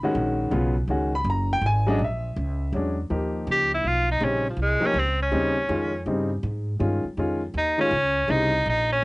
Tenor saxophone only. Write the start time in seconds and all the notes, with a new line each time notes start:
3.51 G4
3.74 E4
3.87 F4
4.11 D#4
4.24 C#4
4.49 F3
4.62 G#3
4.86 C#4
4.99 C4
5.22 C#4
7.58 D#4
7.80 C#4
8.31 D#4
8.69 D#4
8.92 C#4